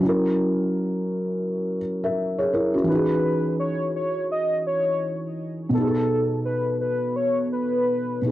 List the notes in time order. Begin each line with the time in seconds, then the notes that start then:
Already playing: F#3
0.01 C#4 E4
0.09 A#4
2.04 A#4 E5
2.38 G#4 C#5
2.53 E4 A#4
2.74 C#4 F#4
2.83 E3 D#4
2.89 F#4 B4
2.95 G#4
3.60 C#5
3.96 C#5
4.32 D#5
4.67 C#5
5.69 B2 B3
5.74 D#4 A4
5.81 G#4
5.87 A4
6.45 B4
6.81 B4
7.16 C#5
7.52 B4
8.22 B2 B3 D#4
8.27 G#4